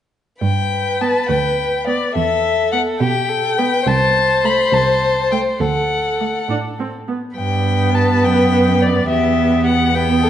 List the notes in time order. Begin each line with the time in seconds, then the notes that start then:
0.41 G2 B4 G5
1.01 B3 A5
1.29 D2 G5
1.87 B3 D5
2.15 E2 A4 E5
2.72 B3 F#5
3.00 B2 G4 G5
3.29 A4
3.58 B3 B4
3.87 C2 C5 A5
4.44 A3 B5
4.73 C2 A5
5.31 A3 G5
5.60 D2 A4 F#5
6.20 A3
6.48 A2 D4
6.79 C4
7.08 B3
7.37 G2 B3 B4 G5
7.95 A5
8.24 F#2 G5
8.82 D5
9.08 E2 B3 G4 E5
9.66 F#5
9.95 B3 B4 G5
10.23 A4